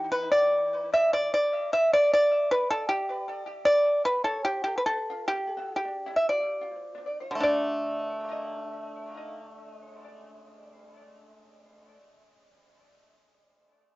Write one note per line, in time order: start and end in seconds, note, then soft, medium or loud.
0.00 1.32 E3 soft
0.12 0.30 B4 medium
0.32 0.89 D5 medium
0.94 1.12 E5 medium
1.13 1.32 D5 medium
1.34 1.70 D5 medium
1.73 1.91 E5 medium
1.93 2.11 D5 medium
2.13 2.49 D5 medium
2.51 2.69 B4 medium
2.71 2.88 A4 medium
2.89 3.43 G4 medium
3.65 4.01 D5 medium
4.05 4.23 B4 medium
4.24 4.42 A4 medium
4.45 4.63 G4 medium
4.64 4.76 G4 medium
4.78 4.85 B4 soft
4.86 5.25 A4 medium
5.28 5.71 G4 medium
5.76 6.14 G4 soft
6.16 6.26 E5 soft
6.29 7.09 D5 soft
7.31 11.93 D3 soft
7.35 11.97 A3 soft
7.40 12.02 D4 soft
7.40 12.01 D5 soft